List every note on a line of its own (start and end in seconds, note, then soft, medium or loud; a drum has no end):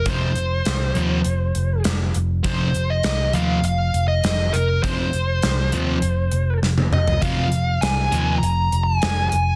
0.06 0.30 F2 medium
0.06 0.31 C3 medium
0.06 0.31 F3 medium
0.06 kick loud
0.06 closed hi-hat medium
0.10 1.83 C5 medium
0.35 0.60 F1 medium
0.35 closed hi-hat medium
0.65 0.91 C2 medium
0.65 snare loud
0.65 closed hi-hat medium
0.95 1.21 D#2 medium
0.95 1.20 F2 medium
0.95 1.20 C3 medium
0.95 1.20 F3 loud
0.95 closed hi-hat medium
1.24 1.51 F1 medium
1.24 closed hi-hat medium
1.55 1.80 F1 medium
1.55 closed hi-hat medium
1.84 2.10 F1 medium
1.84 snare loud
1.84 closed hi-hat medium
2.14 2.40 F1 medium
2.14 closed hi-hat medium
2.44 2.70 F1 medium
2.44 2.69 F2 medium
2.44 2.69 C3 medium
2.44 2.69 F3 loud
2.44 2.91 C5 medium
2.44 kick loud
2.44 closed hi-hat medium
2.74 3.00 F1 medium
2.74 closed hi-hat medium
2.90 3.34 D#5 medium
3.03 3.29 C2 medium
3.03 snare medium
3.03 closed hi-hat medium
3.33 3.59 D#2 medium
3.33 3.58 F2 medium
3.33 3.58 C3 medium
3.33 3.59 F3 medium
3.33 3.64 F5 loud
3.33 closed hi-hat medium
3.63 3.89 F1 medium
3.63 4.07 F5 medium
3.63 closed hi-hat medium
3.94 4.19 F1 medium
3.94 closed hi-hat medium
4.08 4.55 D#5 medium
4.24 4.49 F1 medium
4.24 snare loud
4.24 closed hi-hat medium
4.53 4.79 F1 medium
4.53 4.83 A#4 medium
4.53 closed hi-hat medium
4.83 5.08 F2 medium
4.83 5.08 C3 loud
4.83 5.08 F3 loud
4.83 6.59 C5 medium
4.83 kick loud
4.83 closed hi-hat medium
5.13 5.39 F1 medium
5.13 closed hi-hat medium
5.42 5.69 C2 medium
5.42 snare medium
5.42 closed hi-hat medium
5.72 5.99 D#2 medium
5.72 5.97 F2 medium
5.72 5.97 C3 medium
5.72 5.98 F3 medium
5.72 closed hi-hat medium
6.02 6.28 F1 medium
6.02 closed hi-hat medium
6.32 6.58 F1 medium
6.32 closed hi-hat medium
6.62 6.88 F1 medium
6.62 snare medium
6.78 high tom medium
6.91 7.17 F1 medium
6.91 7.21 D#5 medium
6.91 mid tom medium
7.08 floor tom medium
7.22 7.48 F1 medium
7.22 7.47 F2 loud
7.22 7.47 C3 medium
7.22 7.48 F3 medium
7.22 7.84 F5 medium
7.22 kick loud
7.22 closed hi-hat medium
7.51 7.77 F1 medium
7.51 closed hi-hat medium
7.81 8.07 C2 medium
7.81 8.44 G#5 medium
7.81 snare medium
7.81 closed hi-hat medium
8.12 8.37 D#2 medium
8.12 8.37 F2 medium
8.12 8.37 C3 medium
8.12 8.37 F3 medium
8.12 closed hi-hat medium
8.38 8.82 A#5 medium
8.43 8.67 F1 medium
8.43 closed hi-hat medium
8.72 8.97 F1 medium
8.72 closed hi-hat medium
8.83 9.00 A5 medium
9.00 9.28 G#5 medium
9.00 snare loud
9.00 closed hi-hat medium
9.29 9.55 F1 medium
9.29 9.55 G#5 medium
9.29 closed hi-hat medium